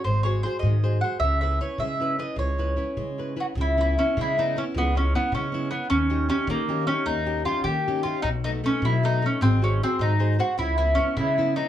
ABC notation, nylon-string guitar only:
X:1
M:6/8
L:1/8
Q:3/8=103
K:C#m
V:1 name="Nylon-string guitar"
G, [FG^B] [FGB] D, [FGB] [FGB] | C, [CEB] [CEB] G, [CEB] [CEB] | G, [CEB] [CEB] G, [CEB] [CEB] | C, [B,CE] [B,CE] G, [B,CE] [B,CE] |
G, [B,CE] [B,CE] G, [B,CE] [B,CE] | D, [CD=G] [CDG] ^A, [CDG] [CDG] | ^A, [CD=G] [CDG] A, [CDG] [CDG] | B,, [A,B,D] [A,B,D] F, [A,B,D] [A,B,D] |
G, [FG^B] [FGB] D, [FGB] [FGB] | C, [B,CE] [B,CE] G, [B,CE] [B,CE] |]